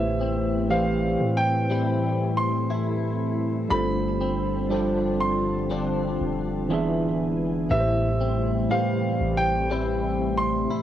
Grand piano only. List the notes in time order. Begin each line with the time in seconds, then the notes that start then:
Already playing: E5
0.71 F5
1.37 G5
2.37 C6
3.70 B5
5.20 C6
7.71 E5
8.71 F5
9.37 G5
10.38 C6